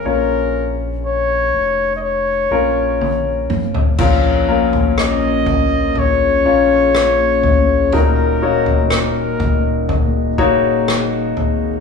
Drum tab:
CC |----------------|x---------------|----------------|
SD |----------------|----r-------r---|----r-------r---|
T1 |------------o---|----------------|----------------|
T2 |--------------o-|----------------|----------------|
FT |---------------o|o--o--o-o-----o-|o--o--o-o-----o-|
BD |----------------|o-----o---------|------o-o-o-----|